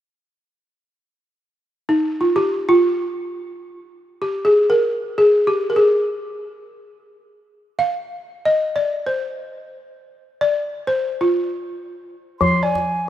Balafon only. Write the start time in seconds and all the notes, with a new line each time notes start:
1.89 D#4
2.21 F4
2.36 G4
2.69 F4
4.22 G4
4.45 G#4
4.70 A#4
5.18 G#4
5.47 G4
5.70 A#4
5.76 G#4
7.79 F5
8.45 D#5
8.76 D5
9.07 C5
10.41 D5
10.87 C5
11.21 F4
12.41 F3
12.63 D5